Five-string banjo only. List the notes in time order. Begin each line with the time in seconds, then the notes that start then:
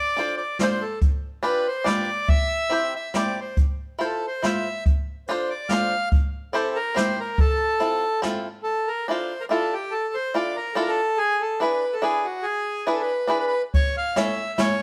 0.17 D4 F4 A4 C5
0.61 D4 F4 A4 C5
1.43 D4 F4 G4 B4
1.84 D4 F4 G4 B4
2.70 C4 E4 G4 C5
3.14 C4 E4 G4 C5
3.99 E4 F4 A4 C5
4.42 E4 F4 A4 C5
5.29 D4 F4 A4 C5
5.71 D4 F4 A4 C5
6.53 C4 E4 G4 C5
6.95 C4 E4 G4 C5
7.80 C4 E4 F4 A4
8.22 C4 E4 F4 A4
9.08 D4 E4 F4 A4
9.49 D4 E4 F4 A4
10.34 D4 E4 F4 A4
10.75 D4 E4 F4 A4
11.60 D4 E4 G#4 B4
12.02 D4 E4 G#4 B4
12.87 D4 E4 G#4 B4
13.27 D4 E4 G#4 B4
14.16 C#4 E4 A4 C#5
14.58 C#4 E4 A4 C#5